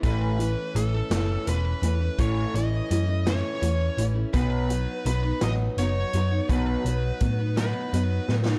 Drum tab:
HH |x-x-x-x-x-x-|x-x-x-x-x-x-|x-x-x-x-x-x-|x-x-x-x-x---|
SD |------o-----|------o-----|------o-----|------o---oo|
BD |o-----------|o-----------|o-----------|o---o-------|